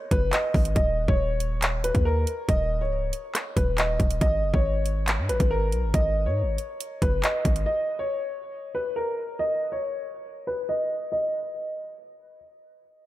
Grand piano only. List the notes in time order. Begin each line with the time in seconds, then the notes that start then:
0.12 B4
0.33 D#5
0.75 D#5
1.08 C#5
1.84 B4
2.05 A#4
2.49 D#5
2.81 C#5
3.57 B4
3.78 D#5
4.22 D#5
4.54 C#5
5.29 B4
5.51 A#4
5.94 D#5
6.26 C#5
7.02 B4
7.24 D#5
7.66 D#5
7.99 C#5
8.75 B4
8.96 A#4
9.39 D#5
9.72 C#5
10.47 B4
10.69 D#5
11.12 D#5